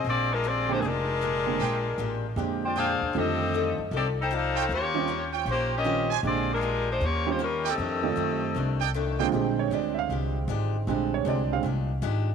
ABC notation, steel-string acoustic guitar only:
X:1
M:4/4
L:1/8
Q:"Swing" 1/4=155
K:Bbmix
V:1 name="Steel-string acoustic guitar"
[B,,A,DG] z [B,,A,DG] z [B,,A,DG] z [B,,A,DG] z | [B,,A,DG] z [B,,A,DG] z [B,,A,DG] z [B,,A,DG] z | [F,E=Ad] z [F,EAd] z [F,EAd] z [F,EAd] z | [E,_DGc] z [E,DGc] z [E,DGc] z [E,DGc] z |
[B,,A,DG] z [B,,A,DG] z [E,_DGc] z [E,DGc] z | [F,,E,=A,D] z [F,,E,A,D] z [F,,E,A,D] z [F,,E,A,D] z | [B,,A,DG] z [B,,A,DG] z [B,,A,DG] z [B,,A,DG] z | [B,,A,DG] z [B,,A,DG] z [B,,A,DG] z [B,,A,DG] z |]